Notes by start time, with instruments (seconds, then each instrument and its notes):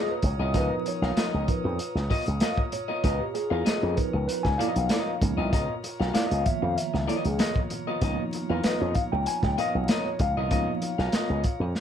Already playing: clean electric guitar B3 F4 A#4 D#5, tonewheel organ F4 C#5 A#5 D#6, tine electric piano G#4
0.11 tine electric piano B4
0.22 slap bass C#2, tine electric piano C#5, muted clean electric guitar stroke, kick, closed hi-hat
0.39 slap bass C2, clean electric guitar B3 F4 A#4 D#5
0.54 slap bass C#2, tine electric piano F3 B3 D#4 A#4 B4, clean electric guitar B3 F4 A#4 D#5, kick, closed hi-hat
0.86 tine electric piano C#5, muted clean electric guitar stroke, closed hi-hat
1.02 slap bass B1, clean electric guitar B3 F4 A#4 F5, snare
1.17 clean electric guitar B3 F4 A#4 D#5, muted slap bass stroke, snare, closed hi-hat
1.34 slap bass C#2
1.47 tine electric piano F3 B3 D#4 A#4 B4, muted clean electric guitar stroke, kick, closed hi-hat
1.64 slap bass F2, muted clean electric guitar stroke
1.79 closed hi-hat
1.95 slap bass C#2, muted clean electric guitar stroke, snare
2.10 clean electric guitar B3 F4 A#4 D#5, kick, open hi-hat
2.26 slap bass C#2, muted clean electric guitar stroke, closed hi-hat
2.40 clean electric guitar B3 F4 A#4 D#5, tine electric piano F5, snare, closed hi-hat
2.58 tine electric piano C#5, kick
2.72 tine electric piano C#5, muted clean electric guitar stroke, closed hi-hat
2.88 clean electric guitar B3 F4 A#4 D#5
3.04 slap bass C#2, clean electric guitar B3 F4 A#4 D#5, tine electric piano B4, kick, closed hi-hat
3.20 tine electric piano G4
3.34 tine electric piano G#4, muted clean electric guitar stroke, closed hi-hat
3.50 slap bass E2, clean electric guitar B3 F4 A#4 F5
3.65 clean electric guitar B3 F4 A#4 D#5, muted slap bass stroke, snare, closed hi-hat
3.82 slap bass F2, tine electric piano G#4
3.97 tine electric piano F3 B3 D#4 A#4 B4, muted clean electric guitar stroke, kick, closed hi-hat
4.13 slap bass C#2, muted clean electric guitar stroke
4.28 tine electric piano B4, closed hi-hat
4.43 slap bass C#2, tine electric piano G#5, muted clean electric guitar stroke, kick, snare
4.58 clean electric guitar B3 F4 A#4 D#5, tine electric piano F5, closed hi-hat
4.76 slap bass B1, muted clean electric guitar stroke, closed hi-hat
4.89 clean electric guitar B3 F4 A#4 D#5, snare, closed hi-hat
5.21 slap bass C#2, tine electric piano F3 A#3 B3 D#4, muted clean electric guitar stroke, kick, closed hi-hat
5.37 slap bass C2, clean electric guitar B3 F4 A#4 D#5
5.52 slap bass C#2, clean electric guitar B3 F4 A#4 D#5, kick, closed hi-hat
5.84 muted clean electric guitar stroke, closed hi-hat
6.00 slap bass B1, clean electric guitar B3 F4 A#4 F5, snare
6.14 clean electric guitar A#3 E4 A4 D5, tine electric piano F5, snare, closed hi-hat
6.26 clean electric guitar B3 F4 A#4 D#5
6.31 slap bass C#2, closed hi-hat
6.45 tine electric piano D#3 F3 A#3 B3 E5, muted clean electric guitar stroke, kick, closed hi-hat
6.62 slap bass F2, tine electric piano F5, muted clean electric guitar stroke
6.76 tine electric piano E5, closed hi-hat
6.94 slap bass C#2, muted clean electric guitar stroke, snare
7.07 clean electric guitar B3 F4 A#4 D#5, tine electric piano C#5, closed hi-hat
7.25 slap bass C#2, tine electric piano G#4, muted clean electric guitar stroke, closed hi-hat
7.39 clean electric guitar B3 F4 A#4 D#5, snare, closed hi-hat
7.56 kick
7.70 muted clean electric guitar stroke, closed hi-hat
7.87 clean electric guitar B3 F4 A#4 D#5
8.01 slap bass C#2, tine electric piano F3 A#3 B3 D#4, clean electric guitar B3 F4 A#4 D#5, kick, closed hi-hat
8.33 muted clean electric guitar stroke, closed hi-hat
8.50 slap bass E2, clean electric guitar B3 F4 A#4 F5
8.64 clean electric guitar B3 F4 A#4 D#5, tine electric piano B4, muted slap bass stroke, snare, closed hi-hat
8.81 slap bass F2, tine electric piano C#5
8.95 tine electric piano F5, muted clean electric guitar stroke, kick, closed hi-hat
9.12 slap bass C#2, tine electric piano G5, muted clean electric guitar stroke
9.26 tine electric piano G#5, closed hi-hat
9.43 slap bass C#2, tine electric piano G5, muted clean electric guitar stroke, kick, snare
9.58 clean electric guitar B3 F4 A#4 D#5, tine electric piano F5, closed hi-hat
9.75 slap bass B1, muted clean electric guitar stroke
9.88 clean electric guitar B3 F4 A#4 D#5, tine electric piano C#5, snare, closed hi-hat
10.06 tine electric piano C#5
10.19 slap bass C#2, tine electric piano F5, muted clean electric guitar stroke, kick, closed hi-hat
10.37 slap bass C2, clean electric guitar B3 F4 A#4 D#5
10.51 slap bass C#2, tine electric piano F3 A#3 B3 D#4, clean electric guitar B3 F4 A#4 D#5, kick, closed hi-hat
10.82 muted clean electric guitar stroke, closed hi-hat
10.98 slap bass B1, clean electric guitar B3 F4 A#4 F5, snare
11.12 clean electric guitar B3 F4 A#4 D#5, muted slap bass stroke, snare, closed hi-hat
11.30 slap bass C#2
11.44 muted clean electric guitar stroke, kick, closed hi-hat
11.60 slap bass F2, muted clean electric guitar stroke
11.75 snare